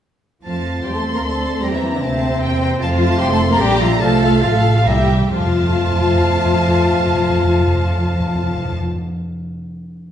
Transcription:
0.43 double bass section F2, cello section F3, french horn section A3 C4, viola section F4, clarinet C5, violin section F5 A5, oboe A5
0.83 double bass section E2, cello section G3, viola section G4, flute section C5, violin section G5 C6
0.93 cello section A3, viola section A4, violin section A5
1.13 cello section A#3, viola section A#4, violin section A#5
1.22 double bass section D2, cello section A3, viola section A4, clarinet C5, flute section D5, oboe A5, violin section A5
1.63 double bass section E2, cello section G3, french horn section A#3, viola section G4, clarinet C5, flute section C5, violin section G5 A#5, oboe A#5
1.72 cello section E3, viola section E4, violin section E5
1.92 cello section D3, viola section D4, violin section D5
2.02 double bass section D2, cello section C3, viola section C4, clarinet C5, violin section C5 A5, flute section E5, oboe A#5
2.41 double bass section E2, violin section G5, flute section G5
2.61 violin section G5
2.81 double bass section F2, cello section F3, french horn section A3 C4, viola section F4, clarinet C5, flute section F5, violin section F5 A5, oboe A5
3.00 violin section A5
3.19 double bass section F1, cello section G3, viola section G4, violin section G5 C6
3.30 cello section A3, viola section A4, violin section A5
3.49 cello section A#3, viola section A#4, violin section A#5
3.59 double bass section A#1, cello section G3, french horn section A#3 D4, viola section G4, clarinet D5, flute section D5, violin section G5 A#5, oboe A#5
3.80 cello section F3, viola section F4, clarinet E5, violin section F5
4.00 double bass section C2, cello section A3, french horn section A3 F4, viola section A4, flute section C5, clarinet F5, oboe A5, violin section A5
4.22 violin section F5
4.42 double bass section A1, cello section F3, viola section F4, clarinet F5, flute section F5, violin section F5, oboe A5
4.54 cello section A3, viola section A4, violin section A5
4.75 cello section F3, viola section F4, violin section F5
4.86 double bass section C2, timpani C3, cello section G3, french horn section A#3 E4, viola section G4, flute section E5, violin section E5 G5, clarinet E5, oboe A#5
4.95 timpani C3
5.05 timpani C3
5.12 timpani C3
5.21 timpani C3
5.31 double bass section F2, timpani F2, cello section F3, french horn section A3 F4, viola section F4, clarinet C5, violin section F5 A5, oboe F5, flute section A5
5.39 timpani F2
5.46 timpani F2
5.54 timpani F2
5.62 timpani F2
5.69 timpani F2
5.77 timpani F2
5.84 timpani F2
5.92 timpani F2
5.99 timpani F2
6.08 timpani F2
6.15 timpani F2
6.23 timpani F2
6.30 timpani F2
6.38 timpani F2
6.45 timpani F2
6.53 timpani F2
6.60 timpani F2
6.68 timpani F2
6.76 timpani F2
6.84 timpani F2
6.92 timpani F2
7.00 timpani F2
7.06 timpani F2
7.14 timpani F2
7.21 timpani F2
7.29 timpani F2
7.36 timpani F2
7.44 timpani F2
7.51 timpani F2
7.59 timpani F2
7.67 timpani F2
7.74 timpani F2
7.82 timpani F2
7.90 timpani F2
7.98 timpani F2
8.05 timpani F2
8.13 timpani F2
8.20 timpani F2
8.27 timpani F2
8.35 timpani F2
8.43 timpani F2
8.49 timpani F2
8.57 timpani F2
8.65 timpani F2
8.72 timpani F2
8.80 timpani F2
8.87 timpani F2
8.94 timpani F2

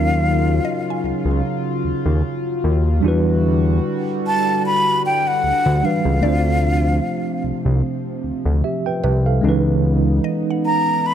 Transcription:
Already playing: analog synth bass D#2, analog synth pad C#3 F#3 F4, tine electric piano F#3 C#4 D#4 F4 A#4, flute F5
0.65 synth pluck D#5
0.90 synth pluck G#5
1.04 analog synth bass C#2
1.25 analog synth bass C#2
1.85 analog synth bass D#2
2.06 analog synth bass D#2
2.64 analog synth bass D#2
3.01 analog synth bass E2, analog synth pad D3 G3 F#4, tine electric piano G3 D4 E4
3.06 tine electric piano F#4 B4
4.27 flute A5
4.66 flute B5
5.06 flute G5
5.27 flute F#5
5.44 analog synth bass D2
5.66 analog synth bass D2
5.83 tine electric piano E3 G3 D4 F#4 B4, flute F5
6.05 analog synth bass C#2
6.21 analog synth bass D2, analog synth pad C3 F3, tine electric piano A3 C4 D4, synth pluck D5
6.26 tine electric piano F4 C5
7.44 analog synth bass C2
7.65 analog synth bass C2
8.24 analog synth bass D2
8.46 analog synth bass D2
8.64 tine electric piano G4 E5
8.86 tine electric piano B4 G5
9.04 analog synth bass C2, synth pluck B4
9.26 tine electric piano A4 F5
9.41 analog synth bass C#2, tine electric piano G#3 C#4 D#4, analog synth pad B3 D#4
9.47 tine electric piano E3 B4
10.24 synth pluck D#5
10.50 synth pluck F#5
10.66 flute A#5
11.06 flute B5

